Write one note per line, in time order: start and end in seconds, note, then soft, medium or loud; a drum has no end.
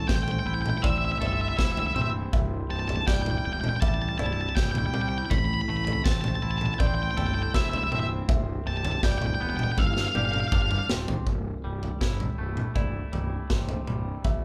0.00 1.21 A2 medium
0.00 2.30 C3 medium
0.00 11.23 G3 medium
0.00 1.58 A3 medium
0.00 2.30 A3 medium
0.00 0.46 E4 medium
0.00 9.73 E4 medium
0.08 0.37 A1 medium
0.08 0.83 C4 medium
0.08 0.84 C5 medium
0.08 0.15 G5 medium
0.08 kick loud
0.08 snare medium
0.16 0.23 G5 medium
0.23 0.31 G5 medium
0.28 0.39 G5 medium
0.28 floor tom medium
0.28 mid tom medium
0.39 0.46 G5 medium
0.46 0.73 A1 medium
0.46 1.57 E4 medium
0.46 0.54 G5 medium
0.54 0.61 G5 medium
0.62 0.69 G5 medium
0.62 mid tom medium
0.70 0.77 G5 medium
0.78 0.85 G5 medium
0.82 1.12 A1 medium
0.82 1.95 C4 medium
0.82 1.58 D5 medium
0.82 0.89 E5 medium
0.82 kick loud
0.82 floor tom medium
0.90 0.97 E5 medium
0.98 1.05 E5 medium
1.05 1.11 E5 medium
1.12 1.18 E5 medium
1.18 1.49 G1 medium
1.18 2.33 A4 medium
1.18 1.26 E5 medium
1.18 floor tom medium
1.27 1.33 E5 medium
1.33 1.41 E5 medium
1.41 1.48 E5 medium
1.48 1.56 E5 medium
1.57 1.86 E1 medium
1.57 4.19 E4 medium
1.57 2.33 C5 medium
1.57 1.65 E5 medium
1.57 kick loud
1.57 snare medium
1.65 1.72 E5 soft
1.72 1.79 E5 medium
1.77 1.86 E5 medium
1.77 floor tom medium
1.87 1.94 E5 medium
1.95 2.23 C1 medium
1.95 3.07 C4 medium
1.95 2.01 E5 medium
1.95 mid tom medium
2.02 2.09 E5 medium
2.33 2.61 C1 medium
2.33 4.19 C2 medium
2.33 9.74 C3 medium
2.33 5.29 C4 medium
2.33 3.08 E5 medium
2.33 kick loud
2.33 floor tom medium
2.69 2.98 C1 medium
2.69 4.56 C3 medium
2.69 2.79 A5 medium
2.79 2.87 A5 medium
2.88 2.95 A5 medium
2.88 floor tom medium
2.96 3.04 A5 medium
3.07 3.35 C1 medium
3.07 3.81 G3 medium
3.07 3.82 D5 medium
3.07 3.14 G5 medium
3.07 kick loud
3.07 snare medium
3.14 3.22 G5 medium
3.22 3.30 G5 medium
3.22 floor tom medium
3.22 mid tom medium
3.31 3.38 G5 medium
3.38 3.45 G5 medium
3.45 3.72 E1 medium
3.45 3.53 G5 medium
3.53 3.60 G5 medium
3.61 3.68 G5 medium
3.61 mid tom medium
3.69 3.76 G5 medium
3.76 3.80 G5 medium
3.81 4.09 A1 medium
3.81 4.93 G3 medium
3.81 4.19 E5 medium
3.81 3.88 A5 medium
3.81 kick loud
3.81 floor tom medium
3.88 3.93 A5 medium
3.94 4.01 A5 medium
4.02 4.08 A5 medium
4.09 4.16 A5 medium
4.18 4.47 C1 medium
4.18 6.42 E4 medium
4.18 4.94 D5 medium
4.18 4.26 A5 medium
4.18 floor tom medium
4.26 4.32 A5 medium
4.33 4.41 A5 medium
4.41 4.48 A5 medium
4.49 4.55 A5 medium
4.56 4.84 C1 medium
4.56 4.63 G5 medium
4.56 kick loud
4.56 snare medium
4.63 4.71 G5 medium
4.71 4.78 G5 medium
4.71 floor tom medium
4.71 mid tom medium
4.78 4.86 G5 medium
4.86 4.94 G5 medium
4.94 5.21 C2 medium
4.94 5.34 G3 medium
4.94 5.31 C5 medium
4.94 5.01 G5 medium
4.94 mid tom medium
5.02 5.08 G5 medium
5.09 5.16 G5 medium
5.18 5.25 G5 medium
5.25 5.33 G5 medium
5.30 5.58 A1 medium
5.30 7.17 A2 medium
5.30 8.26 A3 medium
5.30 5.38 B5 loud
5.30 kick loud
5.30 floor tom medium
5.38 5.45 B5 medium
5.45 5.53 B5 medium
5.54 5.61 B5 medium
5.61 5.69 B5 medium
5.68 5.96 A1 medium
5.68 7.54 A3 medium
5.68 5.76 B5 medium
5.77 5.84 B5 medium
5.85 5.93 B5 medium
5.85 floor tom medium
5.93 6.01 B5 medium
6.04 6.33 A1 medium
6.04 6.79 C4 medium
6.04 6.80 C5 medium
6.04 6.11 A5 medium
6.04 kick loud
6.04 snare medium
6.12 6.19 A5 medium
6.21 6.28 A5 medium
6.21 floor tom medium
6.21 mid tom medium
6.28 6.35 A5 medium
6.35 6.42 A5 medium
6.42 6.70 A1 medium
6.42 7.53 E4 medium
6.42 6.50 A5 medium
6.51 6.58 A5 medium
6.58 6.66 A5 medium
6.58 mid tom medium
6.66 6.74 A5 medium
6.74 6.79 A5 medium
6.79 7.07 A1 medium
6.79 7.91 C4 medium
6.79 7.54 D5 medium
6.79 6.87 G5 medium
6.79 kick loud
6.79 floor tom medium
6.87 6.94 G5 medium
6.95 7.02 G5 medium
7.03 7.10 G5 medium
7.11 7.17 G5 medium
7.17 7.44 G1 medium
7.17 8.29 A4 medium
7.17 7.25 G5 medium
7.17 floor tom medium
7.27 7.34 G5 medium
7.34 7.42 G5 medium
7.43 7.51 G5 medium
7.54 7.82 E1 medium
7.54 8.29 E4 medium
7.54 8.29 C5 medium
7.54 7.61 E5 medium
7.54 kick loud
7.54 snare medium
7.61 7.69 E5 medium
7.70 7.77 E5 medium
7.70 floor tom medium
7.77 7.83 E5 medium
7.84 7.91 E5 medium
7.92 8.19 C1 medium
7.92 9.03 C4 medium
7.92 7.99 E5 soft
7.92 mid tom medium
8.00 8.07 E5 medium
8.27 8.56 C1 medium
8.27 9.77 C2 medium
8.27 9.75 B3 medium
8.27 9.03 E5 medium
8.27 kick loud
8.27 floor tom medium
8.66 8.93 C1 medium
8.66 9.78 C3 medium
8.66 8.76 A5 loud
8.77 8.85 A5 medium
8.85 8.91 A5 medium
8.85 floor tom medium
8.91 9.00 A5 medium
9.03 9.31 C1 medium
9.03 9.78 G3 medium
9.03 9.77 D5 medium
9.03 9.11 G5 medium
9.03 kick loud
9.03 snare medium
9.12 9.18 G5 medium
9.18 9.26 G5 medium
9.18 floor tom medium
9.18 mid tom medium
9.26 9.34 G5 medium
9.35 9.42 G5 medium
9.40 9.68 E1 medium
9.40 9.78 B3 medium
9.40 9.49 G5 medium
9.50 9.56 G5 medium
9.57 9.63 G5 medium
9.57 mid tom medium
9.64 9.71 G5 medium
9.72 9.79 G5 medium
9.77 10.05 G1 medium
9.77 11.26 G2 medium
9.77 11.25 D3 medium
9.77 11.25 C4 medium
9.77 11.25 F4 medium
9.77 9.86 F5 medium
9.77 10.15 E6 medium
9.77 kick loud
9.77 high tom medium
9.87 9.93 F5 medium
9.94 10.01 F5 medium
9.94 snare medium
10.01 10.08 F5 medium
10.08 10.16 F5 medium
10.15 10.42 G1 medium
10.15 11.26 G4 medium
10.15 10.89 D5 medium
10.15 10.25 F5 medium
10.15 mid tom medium
10.25 10.32 F5 medium
10.32 10.40 F5 medium
10.32 mid tom medium
10.40 10.47 F5 medium
10.48 10.54 F5 medium
10.52 10.80 G1 medium
10.52 11.27 D4 medium
10.52 10.62 F5 medium
10.52 kick loud
10.52 mid tom medium
10.62 10.70 F5 medium
10.71 10.78 F5 medium
10.71 mid tom medium
10.78 10.86 F5 medium
10.89 11.17 D1 medium
10.89 11.27 C4 medium
10.89 11.26 C5 medium
10.89 snare medium
11.08 floor tom medium
11.27 11.50 C1 medium
11.27 13.13 C2 medium
11.27 kick medium
11.27 floor tom medium
11.64 11.87 C1 medium
11.64 13.11 G3 medium
11.83 floor tom medium
12.01 12.25 G1 medium
12.01 12.75 E4 medium
12.01 12.75 C5 medium
12.01 kick loud
12.01 snare medium
12.20 floor tom medium
12.20 mid tom medium
12.38 12.62 C1 medium
12.38 14.25 A3 medium
12.57 mid tom medium
12.75 12.99 C1 medium
12.75 14.45 E4 medium
12.75 13.50 D5 medium
12.75 kick medium
12.75 floor tom medium
13.12 13.36 C1 medium
13.12 13.86 G3 soft
13.12 floor tom medium
13.50 13.74 C1 medium
13.50 14.25 C3 medium
13.50 14.24 C5 medium
13.50 kick medium
13.50 snare medium
13.69 floor tom medium
13.87 14.11 C1 medium
13.87 14.25 G3 medium
13.87 mid tom medium
14.24 14.45 B1 medium
14.24 14.45 E2 medium
14.24 14.45 E5 medium
14.24 kick loud
14.24 floor tom medium